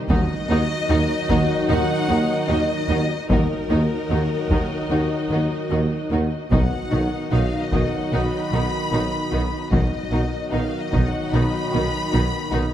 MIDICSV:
0, 0, Header, 1, 11, 480
1, 0, Start_track
1, 0, Tempo, 801068
1, 61, Time_signature, 4, 2, 24, 8
1, 7632, End_track
2, 0, Start_track
2, 0, Title_t, "Violin section"
2, 0, Program_c, 0, 48
2, 59, Note_on_c, 0, 75, 103
2, 989, Note_off_c, 0, 75, 0
2, 1011, Note_on_c, 0, 78, 99
2, 1489, Note_on_c, 0, 75, 91
2, 1492, Note_off_c, 0, 78, 0
2, 1975, Note_off_c, 0, 75, 0
2, 1978, Note_on_c, 0, 70, 79
2, 3643, Note_off_c, 0, 70, 0
2, 3902, Note_on_c, 0, 78, 71
2, 4362, Note_off_c, 0, 78, 0
2, 4389, Note_on_c, 0, 77, 67
2, 4550, Note_off_c, 0, 77, 0
2, 4552, Note_on_c, 0, 75, 67
2, 4712, Note_on_c, 0, 78, 61
2, 4714, Note_off_c, 0, 75, 0
2, 4872, Note_on_c, 0, 83, 75
2, 4874, Note_off_c, 0, 78, 0
2, 5823, Note_on_c, 0, 75, 71
2, 5826, Note_off_c, 0, 83, 0
2, 6294, Note_off_c, 0, 75, 0
2, 6309, Note_on_c, 0, 77, 71
2, 6465, Note_off_c, 0, 77, 0
2, 6468, Note_on_c, 0, 75, 72
2, 6624, Note_on_c, 0, 78, 68
2, 6630, Note_off_c, 0, 75, 0
2, 6788, Note_off_c, 0, 78, 0
2, 6789, Note_on_c, 0, 83, 87
2, 7632, Note_off_c, 0, 83, 0
2, 7632, End_track
3, 0, Start_track
3, 0, Title_t, "String section"
3, 0, Program_c, 1, 48
3, 60, Note_on_c, 1, 63, 82
3, 61, Note_on_c, 1, 66, 72
3, 61, Note_on_c, 1, 75, 77
3, 1952, Note_off_c, 1, 63, 0
3, 1953, Note_off_c, 1, 75, 0
3, 1973, Note_off_c, 1, 66, 0
3, 1980, Note_on_c, 1, 66, 62
3, 1981, Note_on_c, 1, 63, 65
3, 1981, Note_on_c, 1, 75, 57
3, 1982, Note_off_c, 1, 75, 0
3, 1982, Note_on_c, 1, 75, 67
3, 3886, Note_off_c, 1, 66, 0
3, 3887, Note_off_c, 1, 63, 0
3, 3887, Note_off_c, 1, 75, 0
3, 3907, Note_on_c, 1, 63, 57
3, 3907, Note_on_c, 1, 75, 51
3, 3908, Note_off_c, 1, 75, 0
3, 3908, Note_on_c, 1, 75, 58
3, 3910, Note_on_c, 1, 66, 59
3, 5802, Note_off_c, 1, 63, 0
3, 5803, Note_off_c, 1, 75, 0
3, 5804, Note_off_c, 1, 66, 0
3, 5823, Note_on_c, 1, 66, 59
3, 5823, Note_on_c, 1, 75, 51
3, 5824, Note_on_c, 1, 63, 55
3, 5826, Note_off_c, 1, 75, 0
3, 5826, Note_on_c, 1, 75, 56
3, 7632, Note_off_c, 1, 63, 0
3, 7632, Note_off_c, 1, 66, 0
3, 7632, Note_off_c, 1, 75, 0
3, 7632, End_track
4, 0, Start_track
4, 0, Title_t, "Violin section"
4, 0, Program_c, 2, 48
4, 60, Note_on_c, 2, 63, 64
4, 60, Note_on_c, 2, 66, 60
4, 108, Note_off_c, 2, 63, 0
4, 108, Note_off_c, 2, 66, 0
4, 296, Note_on_c, 2, 63, 58
4, 298, Note_on_c, 2, 66, 61
4, 344, Note_off_c, 2, 63, 0
4, 346, Note_off_c, 2, 66, 0
4, 538, Note_on_c, 2, 63, 61
4, 538, Note_on_c, 2, 66, 62
4, 586, Note_off_c, 2, 63, 0
4, 586, Note_off_c, 2, 66, 0
4, 776, Note_on_c, 2, 66, 53
4, 777, Note_on_c, 2, 63, 56
4, 824, Note_off_c, 2, 66, 0
4, 825, Note_off_c, 2, 63, 0
4, 1015, Note_on_c, 2, 66, 60
4, 1016, Note_on_c, 2, 63, 65
4, 1063, Note_off_c, 2, 66, 0
4, 1064, Note_off_c, 2, 63, 0
4, 1260, Note_on_c, 2, 66, 60
4, 1261, Note_on_c, 2, 63, 58
4, 1308, Note_off_c, 2, 66, 0
4, 1309, Note_off_c, 2, 63, 0
4, 1502, Note_on_c, 2, 63, 52
4, 1502, Note_on_c, 2, 66, 51
4, 1550, Note_off_c, 2, 63, 0
4, 1550, Note_off_c, 2, 66, 0
4, 1744, Note_on_c, 2, 66, 48
4, 1746, Note_on_c, 2, 63, 51
4, 1792, Note_off_c, 2, 66, 0
4, 1794, Note_off_c, 2, 63, 0
4, 1981, Note_on_c, 2, 63, 47
4, 1983, Note_on_c, 2, 66, 53
4, 2029, Note_off_c, 2, 63, 0
4, 2031, Note_off_c, 2, 66, 0
4, 2223, Note_on_c, 2, 63, 47
4, 2227, Note_on_c, 2, 66, 48
4, 2271, Note_off_c, 2, 63, 0
4, 2275, Note_off_c, 2, 66, 0
4, 2457, Note_on_c, 2, 66, 43
4, 2459, Note_on_c, 2, 63, 46
4, 2505, Note_off_c, 2, 66, 0
4, 2507, Note_off_c, 2, 63, 0
4, 2698, Note_on_c, 2, 63, 39
4, 2701, Note_on_c, 2, 66, 40
4, 2746, Note_off_c, 2, 63, 0
4, 2749, Note_off_c, 2, 66, 0
4, 2934, Note_on_c, 2, 66, 46
4, 2939, Note_on_c, 2, 63, 41
4, 2982, Note_off_c, 2, 66, 0
4, 2987, Note_off_c, 2, 63, 0
4, 3184, Note_on_c, 2, 66, 43
4, 3185, Note_on_c, 2, 63, 41
4, 3232, Note_off_c, 2, 66, 0
4, 3233, Note_off_c, 2, 63, 0
4, 3418, Note_on_c, 2, 63, 37
4, 3420, Note_on_c, 2, 66, 36
4, 3466, Note_off_c, 2, 63, 0
4, 3468, Note_off_c, 2, 66, 0
4, 3662, Note_on_c, 2, 66, 37
4, 3663, Note_on_c, 2, 63, 39
4, 3710, Note_off_c, 2, 66, 0
4, 3711, Note_off_c, 2, 63, 0
4, 3903, Note_on_c, 2, 66, 45
4, 3905, Note_on_c, 2, 63, 43
4, 3951, Note_off_c, 2, 66, 0
4, 3952, Note_off_c, 2, 63, 0
4, 4141, Note_on_c, 2, 63, 40
4, 4142, Note_on_c, 2, 66, 46
4, 4189, Note_off_c, 2, 63, 0
4, 4190, Note_off_c, 2, 66, 0
4, 4381, Note_on_c, 2, 63, 42
4, 4383, Note_on_c, 2, 66, 44
4, 4429, Note_off_c, 2, 63, 0
4, 4431, Note_off_c, 2, 66, 0
4, 4628, Note_on_c, 2, 63, 39
4, 4629, Note_on_c, 2, 66, 39
4, 4676, Note_off_c, 2, 63, 0
4, 4677, Note_off_c, 2, 66, 0
4, 4871, Note_on_c, 2, 63, 45
4, 4871, Note_on_c, 2, 66, 45
4, 4919, Note_off_c, 2, 63, 0
4, 4919, Note_off_c, 2, 66, 0
4, 5108, Note_on_c, 2, 66, 42
4, 5109, Note_on_c, 2, 63, 42
4, 5156, Note_off_c, 2, 66, 0
4, 5157, Note_off_c, 2, 63, 0
4, 5344, Note_on_c, 2, 63, 43
4, 5344, Note_on_c, 2, 66, 42
4, 5392, Note_off_c, 2, 63, 0
4, 5392, Note_off_c, 2, 66, 0
4, 5582, Note_on_c, 2, 66, 42
4, 5585, Note_on_c, 2, 63, 42
4, 5630, Note_off_c, 2, 66, 0
4, 5633, Note_off_c, 2, 63, 0
4, 5818, Note_on_c, 2, 66, 43
4, 5820, Note_on_c, 2, 63, 42
4, 5866, Note_off_c, 2, 66, 0
4, 5868, Note_off_c, 2, 63, 0
4, 6060, Note_on_c, 2, 63, 45
4, 6060, Note_on_c, 2, 66, 46
4, 6107, Note_off_c, 2, 66, 0
4, 6108, Note_off_c, 2, 63, 0
4, 6292, Note_on_c, 2, 63, 47
4, 6295, Note_on_c, 2, 66, 45
4, 6340, Note_off_c, 2, 63, 0
4, 6343, Note_off_c, 2, 66, 0
4, 6541, Note_on_c, 2, 66, 41
4, 6545, Note_on_c, 2, 63, 42
4, 6589, Note_off_c, 2, 66, 0
4, 6593, Note_off_c, 2, 63, 0
4, 6786, Note_on_c, 2, 63, 48
4, 6790, Note_on_c, 2, 66, 44
4, 6834, Note_off_c, 2, 63, 0
4, 6838, Note_off_c, 2, 66, 0
4, 7024, Note_on_c, 2, 66, 47
4, 7026, Note_on_c, 2, 63, 47
4, 7072, Note_off_c, 2, 66, 0
4, 7074, Note_off_c, 2, 63, 0
4, 7262, Note_on_c, 2, 63, 46
4, 7262, Note_on_c, 2, 66, 50
4, 7310, Note_off_c, 2, 63, 0
4, 7310, Note_off_c, 2, 66, 0
4, 7495, Note_on_c, 2, 63, 50
4, 7498, Note_on_c, 2, 66, 50
4, 7543, Note_off_c, 2, 63, 0
4, 7545, Note_off_c, 2, 66, 0
4, 7632, End_track
5, 0, Start_track
5, 0, Title_t, "French horn section"
5, 0, Program_c, 3, 60
5, 64, Note_on_c, 3, 54, 77
5, 66, Note_on_c, 3, 63, 82
5, 1872, Note_off_c, 3, 54, 0
5, 1872, Note_off_c, 3, 63, 0
5, 1974, Note_on_c, 3, 54, 63
5, 1974, Note_on_c, 3, 63, 62
5, 3690, Note_off_c, 3, 54, 0
5, 3690, Note_off_c, 3, 63, 0
5, 3910, Note_on_c, 3, 54, 63
5, 3911, Note_on_c, 3, 63, 56
5, 5804, Note_off_c, 3, 54, 0
5, 5804, Note_off_c, 3, 63, 0
5, 5830, Note_on_c, 3, 63, 60
5, 5832, Note_on_c, 3, 54, 63
5, 7632, Note_off_c, 3, 54, 0
5, 7632, Note_off_c, 3, 63, 0
5, 7632, End_track
6, 0, Start_track
6, 0, Title_t, "Viola section"
6, 0, Program_c, 4, 48
6, 62, Note_on_c, 4, 51, 59
6, 63, Note_on_c, 4, 63, 59
6, 110, Note_off_c, 4, 51, 0
6, 111, Note_off_c, 4, 63, 0
6, 297, Note_on_c, 4, 51, 54
6, 299, Note_on_c, 4, 63, 59
6, 345, Note_off_c, 4, 51, 0
6, 347, Note_off_c, 4, 63, 0
6, 534, Note_on_c, 4, 51, 62
6, 534, Note_on_c, 4, 63, 60
6, 582, Note_off_c, 4, 51, 0
6, 582, Note_off_c, 4, 63, 0
6, 775, Note_on_c, 4, 51, 59
6, 776, Note_on_c, 4, 63, 62
6, 823, Note_off_c, 4, 51, 0
6, 824, Note_off_c, 4, 63, 0
6, 1011, Note_on_c, 4, 63, 59
6, 1014, Note_on_c, 4, 51, 63
6, 1059, Note_off_c, 4, 63, 0
6, 1062, Note_off_c, 4, 51, 0
6, 1249, Note_on_c, 4, 51, 51
6, 1249, Note_on_c, 4, 63, 50
6, 1297, Note_off_c, 4, 51, 0
6, 1297, Note_off_c, 4, 63, 0
6, 1488, Note_on_c, 4, 63, 57
6, 1489, Note_on_c, 4, 51, 54
6, 1536, Note_off_c, 4, 63, 0
6, 1537, Note_off_c, 4, 51, 0
6, 1729, Note_on_c, 4, 63, 52
6, 1731, Note_on_c, 4, 51, 52
6, 1777, Note_off_c, 4, 63, 0
6, 1779, Note_off_c, 4, 51, 0
6, 1972, Note_on_c, 4, 51, 52
6, 1975, Note_on_c, 4, 63, 48
6, 2020, Note_off_c, 4, 51, 0
6, 2022, Note_off_c, 4, 63, 0
6, 2214, Note_on_c, 4, 63, 47
6, 2215, Note_on_c, 4, 51, 45
6, 2262, Note_off_c, 4, 51, 0
6, 2262, Note_off_c, 4, 63, 0
6, 2459, Note_on_c, 4, 51, 44
6, 2460, Note_on_c, 4, 63, 45
6, 2507, Note_off_c, 4, 51, 0
6, 2508, Note_off_c, 4, 63, 0
6, 2704, Note_on_c, 4, 51, 47
6, 2704, Note_on_c, 4, 63, 41
6, 2752, Note_off_c, 4, 51, 0
6, 2752, Note_off_c, 4, 63, 0
6, 2943, Note_on_c, 4, 51, 44
6, 2943, Note_on_c, 4, 63, 44
6, 2991, Note_off_c, 4, 51, 0
6, 2991, Note_off_c, 4, 63, 0
6, 3180, Note_on_c, 4, 51, 38
6, 3182, Note_on_c, 4, 63, 35
6, 3228, Note_off_c, 4, 51, 0
6, 3230, Note_off_c, 4, 63, 0
6, 3424, Note_on_c, 4, 51, 41
6, 3426, Note_on_c, 4, 63, 37
6, 3472, Note_off_c, 4, 51, 0
6, 3474, Note_off_c, 4, 63, 0
6, 3667, Note_on_c, 4, 51, 39
6, 3668, Note_on_c, 4, 63, 37
6, 3715, Note_off_c, 4, 51, 0
6, 3716, Note_off_c, 4, 63, 0
6, 3908, Note_on_c, 4, 51, 44
6, 3908, Note_on_c, 4, 63, 46
6, 3956, Note_off_c, 4, 51, 0
6, 3956, Note_off_c, 4, 63, 0
6, 4148, Note_on_c, 4, 51, 43
6, 4149, Note_on_c, 4, 63, 41
6, 4196, Note_off_c, 4, 51, 0
6, 4196, Note_off_c, 4, 63, 0
6, 4389, Note_on_c, 4, 63, 47
6, 4390, Note_on_c, 4, 51, 43
6, 4437, Note_off_c, 4, 51, 0
6, 4437, Note_off_c, 4, 63, 0
6, 4635, Note_on_c, 4, 51, 42
6, 4636, Note_on_c, 4, 63, 44
6, 4683, Note_off_c, 4, 51, 0
6, 4684, Note_off_c, 4, 63, 0
6, 4873, Note_on_c, 4, 51, 43
6, 4874, Note_on_c, 4, 63, 45
6, 4921, Note_off_c, 4, 51, 0
6, 4922, Note_off_c, 4, 63, 0
6, 5111, Note_on_c, 4, 51, 39
6, 5113, Note_on_c, 4, 63, 36
6, 5159, Note_off_c, 4, 51, 0
6, 5161, Note_off_c, 4, 63, 0
6, 5352, Note_on_c, 4, 63, 45
6, 5355, Note_on_c, 4, 51, 40
6, 5400, Note_off_c, 4, 63, 0
6, 5402, Note_off_c, 4, 51, 0
6, 5586, Note_on_c, 4, 63, 41
6, 5587, Note_on_c, 4, 51, 43
6, 5634, Note_off_c, 4, 63, 0
6, 5635, Note_off_c, 4, 51, 0
6, 5826, Note_on_c, 4, 51, 44
6, 5826, Note_on_c, 4, 63, 43
6, 5874, Note_off_c, 4, 51, 0
6, 5874, Note_off_c, 4, 63, 0
6, 6064, Note_on_c, 4, 51, 40
6, 6067, Note_on_c, 4, 63, 42
6, 6112, Note_off_c, 4, 51, 0
6, 6115, Note_off_c, 4, 63, 0
6, 6304, Note_on_c, 4, 63, 43
6, 6306, Note_on_c, 4, 51, 48
6, 6352, Note_off_c, 4, 63, 0
6, 6354, Note_off_c, 4, 51, 0
6, 6552, Note_on_c, 4, 51, 43
6, 6552, Note_on_c, 4, 63, 45
6, 6600, Note_off_c, 4, 51, 0
6, 6600, Note_off_c, 4, 63, 0
6, 6798, Note_on_c, 4, 51, 49
6, 6798, Note_on_c, 4, 63, 47
6, 6846, Note_off_c, 4, 51, 0
6, 6846, Note_off_c, 4, 63, 0
6, 7037, Note_on_c, 4, 63, 42
6, 7039, Note_on_c, 4, 51, 45
6, 7085, Note_off_c, 4, 63, 0
6, 7087, Note_off_c, 4, 51, 0
6, 7273, Note_on_c, 4, 63, 48
6, 7275, Note_on_c, 4, 51, 49
6, 7321, Note_off_c, 4, 63, 0
6, 7323, Note_off_c, 4, 51, 0
6, 7508, Note_on_c, 4, 51, 47
6, 7508, Note_on_c, 4, 63, 53
6, 7556, Note_off_c, 4, 51, 0
6, 7556, Note_off_c, 4, 63, 0
6, 7632, End_track
7, 0, Start_track
7, 0, Title_t, "Trombone section"
7, 0, Program_c, 5, 61
7, 58, Note_on_c, 5, 51, 71
7, 60, Note_off_c, 5, 51, 0
7, 60, Note_on_c, 5, 51, 75
7, 1868, Note_off_c, 5, 51, 0
7, 1970, Note_on_c, 5, 51, 60
7, 1971, Note_off_c, 5, 51, 0
7, 1971, Note_on_c, 5, 51, 67
7, 3688, Note_off_c, 5, 51, 0
7, 3904, Note_on_c, 5, 51, 55
7, 5801, Note_off_c, 5, 51, 0
7, 5828, Note_on_c, 5, 51, 53
7, 5829, Note_off_c, 5, 51, 0
7, 5829, Note_on_c, 5, 51, 58
7, 7632, Note_off_c, 5, 51, 0
7, 7632, End_track
8, 0, Start_track
8, 0, Title_t, "Cello section"
8, 0, Program_c, 6, 48
8, 59, Note_on_c, 6, 39, 68
8, 107, Note_off_c, 6, 39, 0
8, 300, Note_on_c, 6, 39, 62
8, 348, Note_off_c, 6, 39, 0
8, 540, Note_on_c, 6, 39, 63
8, 588, Note_off_c, 6, 39, 0
8, 780, Note_on_c, 6, 39, 64
8, 827, Note_off_c, 6, 39, 0
8, 1018, Note_on_c, 6, 39, 66
8, 1066, Note_off_c, 6, 39, 0
8, 1256, Note_on_c, 6, 39, 62
8, 1304, Note_off_c, 6, 39, 0
8, 1499, Note_on_c, 6, 39, 56
8, 1547, Note_off_c, 6, 39, 0
8, 1737, Note_on_c, 6, 39, 57
8, 1785, Note_off_c, 6, 39, 0
8, 1976, Note_on_c, 6, 39, 58
8, 2024, Note_off_c, 6, 39, 0
8, 2220, Note_on_c, 6, 39, 52
8, 2268, Note_off_c, 6, 39, 0
8, 2465, Note_on_c, 6, 39, 51
8, 2513, Note_off_c, 6, 39, 0
8, 2700, Note_on_c, 6, 39, 48
8, 2748, Note_off_c, 6, 39, 0
8, 2937, Note_on_c, 6, 39, 43
8, 2985, Note_off_c, 6, 39, 0
8, 3179, Note_on_c, 6, 39, 47
8, 3226, Note_off_c, 6, 39, 0
8, 3419, Note_on_c, 6, 39, 46
8, 3466, Note_off_c, 6, 39, 0
8, 3662, Note_on_c, 6, 39, 44
8, 3710, Note_off_c, 6, 39, 0
8, 3897, Note_on_c, 6, 47, 51
8, 3945, Note_off_c, 6, 47, 0
8, 4145, Note_on_c, 6, 47, 47
8, 4193, Note_off_c, 6, 47, 0
8, 4382, Note_on_c, 6, 47, 47
8, 4430, Note_off_c, 6, 47, 0
8, 4623, Note_on_c, 6, 47, 47
8, 4671, Note_off_c, 6, 47, 0
8, 4866, Note_on_c, 6, 47, 44
8, 4914, Note_off_c, 6, 47, 0
8, 5104, Note_on_c, 6, 47, 47
8, 5152, Note_off_c, 6, 47, 0
8, 5345, Note_on_c, 6, 47, 47
8, 5393, Note_off_c, 6, 47, 0
8, 5581, Note_on_c, 6, 47, 49
8, 5629, Note_off_c, 6, 47, 0
8, 5823, Note_on_c, 6, 47, 51
8, 5871, Note_off_c, 6, 47, 0
8, 6065, Note_on_c, 6, 47, 49
8, 6113, Note_off_c, 6, 47, 0
8, 6304, Note_on_c, 6, 47, 50
8, 6352, Note_off_c, 6, 47, 0
8, 6546, Note_on_c, 6, 47, 49
8, 6594, Note_off_c, 6, 47, 0
8, 6792, Note_on_c, 6, 47, 52
8, 6840, Note_off_c, 6, 47, 0
8, 7030, Note_on_c, 6, 47, 52
8, 7078, Note_off_c, 6, 47, 0
8, 7268, Note_on_c, 6, 47, 54
8, 7316, Note_off_c, 6, 47, 0
8, 7504, Note_on_c, 6, 47, 60
8, 7552, Note_off_c, 6, 47, 0
8, 7632, End_track
9, 0, Start_track
9, 0, Title_t, "Double bass section"
9, 0, Program_c, 7, 48
9, 58, Note_on_c, 7, 39, 73
9, 106, Note_off_c, 7, 39, 0
9, 295, Note_on_c, 7, 39, 62
9, 343, Note_off_c, 7, 39, 0
9, 532, Note_on_c, 7, 39, 68
9, 580, Note_off_c, 7, 39, 0
9, 776, Note_on_c, 7, 39, 73
9, 824, Note_off_c, 7, 39, 0
9, 1012, Note_on_c, 7, 39, 70
9, 1060, Note_off_c, 7, 39, 0
9, 1251, Note_on_c, 7, 39, 61
9, 1299, Note_off_c, 7, 39, 0
9, 1495, Note_on_c, 7, 39, 64
9, 1543, Note_off_c, 7, 39, 0
9, 1733, Note_on_c, 7, 39, 59
9, 1781, Note_off_c, 7, 39, 0
9, 1981, Note_on_c, 7, 39, 58
9, 2029, Note_off_c, 7, 39, 0
9, 2221, Note_on_c, 7, 39, 50
9, 2269, Note_off_c, 7, 39, 0
9, 2460, Note_on_c, 7, 39, 50
9, 2508, Note_off_c, 7, 39, 0
9, 2696, Note_on_c, 7, 39, 48
9, 2744, Note_off_c, 7, 39, 0
9, 2940, Note_on_c, 7, 39, 47
9, 2988, Note_off_c, 7, 39, 0
9, 3177, Note_on_c, 7, 39, 48
9, 3225, Note_off_c, 7, 39, 0
9, 3425, Note_on_c, 7, 39, 46
9, 3473, Note_off_c, 7, 39, 0
9, 3665, Note_on_c, 7, 39, 43
9, 3713, Note_off_c, 7, 39, 0
9, 3906, Note_on_c, 7, 35, 53
9, 3954, Note_off_c, 7, 35, 0
9, 4150, Note_on_c, 7, 35, 45
9, 4198, Note_off_c, 7, 35, 0
9, 4386, Note_on_c, 7, 35, 54
9, 4434, Note_off_c, 7, 35, 0
9, 4628, Note_on_c, 7, 35, 48
9, 4675, Note_off_c, 7, 35, 0
9, 4871, Note_on_c, 7, 35, 49
9, 4919, Note_off_c, 7, 35, 0
9, 5110, Note_on_c, 7, 35, 48
9, 5158, Note_off_c, 7, 35, 0
9, 5354, Note_on_c, 7, 35, 54
9, 5402, Note_off_c, 7, 35, 0
9, 5585, Note_on_c, 7, 35, 47
9, 5633, Note_off_c, 7, 35, 0
9, 5823, Note_on_c, 7, 35, 57
9, 5870, Note_off_c, 7, 35, 0
9, 6060, Note_on_c, 7, 35, 47
9, 6108, Note_off_c, 7, 35, 0
9, 6307, Note_on_c, 7, 35, 52
9, 6355, Note_off_c, 7, 35, 0
9, 6550, Note_on_c, 7, 35, 53
9, 6598, Note_off_c, 7, 35, 0
9, 6790, Note_on_c, 7, 35, 57
9, 6838, Note_off_c, 7, 35, 0
9, 7033, Note_on_c, 7, 35, 58
9, 7081, Note_off_c, 7, 35, 0
9, 7269, Note_on_c, 7, 35, 60
9, 7317, Note_off_c, 7, 35, 0
9, 7501, Note_on_c, 7, 35, 56
9, 7549, Note_off_c, 7, 35, 0
9, 7632, End_track
10, 0, Start_track
10, 0, Title_t, "Tuba"
10, 0, Program_c, 8, 58
10, 59, Note_on_c, 8, 39, 70
10, 154, Note_off_c, 8, 39, 0
10, 295, Note_on_c, 8, 39, 67
10, 391, Note_off_c, 8, 39, 0
10, 534, Note_on_c, 8, 39, 70
10, 630, Note_off_c, 8, 39, 0
10, 779, Note_on_c, 8, 39, 68
10, 874, Note_off_c, 8, 39, 0
10, 1015, Note_on_c, 8, 39, 67
10, 1110, Note_off_c, 8, 39, 0
10, 1256, Note_on_c, 8, 39, 65
10, 1352, Note_off_c, 8, 39, 0
10, 1494, Note_on_c, 8, 39, 58
10, 1590, Note_off_c, 8, 39, 0
10, 1732, Note_on_c, 8, 39, 60
10, 1830, Note_off_c, 8, 39, 0
10, 1974, Note_on_c, 8, 39, 62
10, 2071, Note_off_c, 8, 39, 0
10, 2223, Note_on_c, 8, 39, 55
10, 2319, Note_off_c, 8, 39, 0
10, 2460, Note_on_c, 8, 39, 53
10, 2556, Note_off_c, 8, 39, 0
10, 2700, Note_on_c, 8, 39, 46
10, 2796, Note_off_c, 8, 39, 0
10, 2941, Note_on_c, 8, 39, 53
10, 3038, Note_off_c, 8, 39, 0
10, 3179, Note_on_c, 8, 39, 43
10, 3277, Note_off_c, 8, 39, 0
10, 3426, Note_on_c, 8, 39, 46
10, 3522, Note_off_c, 8, 39, 0
10, 3665, Note_on_c, 8, 39, 44
10, 3762, Note_off_c, 8, 39, 0
10, 3906, Note_on_c, 8, 35, 55
10, 4002, Note_off_c, 8, 35, 0
10, 4153, Note_on_c, 8, 35, 51
10, 4248, Note_off_c, 8, 35, 0
10, 4389, Note_on_c, 8, 35, 47
10, 4486, Note_off_c, 8, 35, 0
10, 4633, Note_on_c, 8, 35, 51
10, 4730, Note_off_c, 8, 35, 0
10, 4872, Note_on_c, 8, 35, 50
10, 4969, Note_off_c, 8, 35, 0
10, 5109, Note_on_c, 8, 35, 44
10, 5205, Note_off_c, 8, 35, 0
10, 5355, Note_on_c, 8, 35, 47
10, 5449, Note_off_c, 8, 35, 0
10, 5591, Note_on_c, 8, 35, 49
10, 5686, Note_off_c, 8, 35, 0
10, 5827, Note_on_c, 8, 35, 55
10, 5922, Note_off_c, 8, 35, 0
10, 6070, Note_on_c, 8, 35, 46
10, 6165, Note_off_c, 8, 35, 0
10, 6306, Note_on_c, 8, 35, 52
10, 6403, Note_off_c, 8, 35, 0
10, 6554, Note_on_c, 8, 35, 52
10, 6650, Note_off_c, 8, 35, 0
10, 6795, Note_on_c, 8, 35, 55
10, 6890, Note_off_c, 8, 35, 0
10, 7030, Note_on_c, 8, 35, 48
10, 7125, Note_off_c, 8, 35, 0
10, 7271, Note_on_c, 8, 35, 58
10, 7365, Note_off_c, 8, 35, 0
10, 7512, Note_on_c, 8, 35, 57
10, 7605, Note_off_c, 8, 35, 0
10, 7632, End_track
11, 0, Start_track
11, 0, Title_t, "Taiko and cinematic ensemble drums"
11, 62, Note_on_c, 9, 41, 97
11, 122, Note_off_c, 9, 41, 0
11, 776, Note_on_c, 9, 41, 74
11, 836, Note_off_c, 9, 41, 0
11, 1976, Note_on_c, 9, 41, 86
11, 2036, Note_off_c, 9, 41, 0
11, 2701, Note_on_c, 9, 41, 67
11, 2761, Note_off_c, 9, 41, 0
11, 3908, Note_on_c, 9, 41, 86
11, 3968, Note_off_c, 9, 41, 0
11, 4628, Note_on_c, 9, 41, 69
11, 4688, Note_off_c, 9, 41, 0
11, 5829, Note_on_c, 9, 41, 84
11, 5889, Note_off_c, 9, 41, 0
11, 6548, Note_on_c, 9, 41, 68
11, 6608, Note_off_c, 9, 41, 0
11, 7632, End_track
0, 0, End_of_file